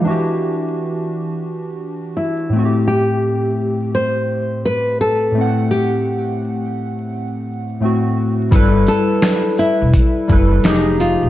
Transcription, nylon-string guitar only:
X:1
M:4/4
L:1/8
Q:"Swing 16ths" 1/4=85
K:Ador
V:1 name="Nylon-string guitar"
E4 z2 E2 | G3 c2 B A2 | G6 z2 | z A2 E3 _E =F |]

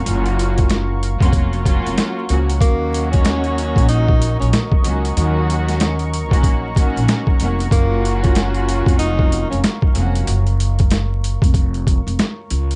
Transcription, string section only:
X:1
M:4/4
L:1/16
Q:"Swing 16ths" 1/4=94
K:Gb
V:1 name="String section"
[G,B,DFG]6 z [G,B,DFG]3 [G,B,DFG]4 [F,G,B,DG]2 | [E,G,B,DG]12- [E,G,B,DG] z [E,G,B,DG]2 | [E,G,B,DG]6 z [E,G,B,DG]3 [E,G,B,DG]4 [E,G,B,DG]2 | [G,B,DFG]12- [G,B,DFG] z [F,G,B,DG]2 |
z16 |]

